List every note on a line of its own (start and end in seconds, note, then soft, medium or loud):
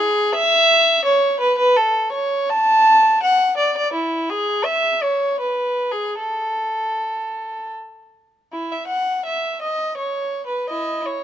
0.00 0.35 G#4 medium
0.35 1.05 E5 loud
1.05 1.40 C#5 medium
1.40 1.57 B4 medium
1.58 1.76 B4 medium
1.76 2.13 A4 medium
2.12 2.50 C#5 medium
2.49 3.23 A5 loud
3.23 3.58 F#5 medium
3.57 3.76 D5 medium
3.78 3.95 D5 medium
3.93 4.29 E4 medium
4.29 4.66 G#4 medium
4.64 5.02 E5 medium
5.02 5.40 C#5 medium
5.40 5.91 B4 medium
5.91 6.18 G#4 medium
6.18 7.71 A4 medium
8.52 8.71 E4 medium
8.72 8.91 E5 medium
8.88 9.25 F#5 medium
9.26 9.62 E5 medium
9.62 9.98 D#5 medium
9.98 10.45 C#5 medium
10.47 10.70 B4 medium
10.69 11.03 E4 soft
10.69 11.05 D#5 medium
11.06 11.24 C#5 medium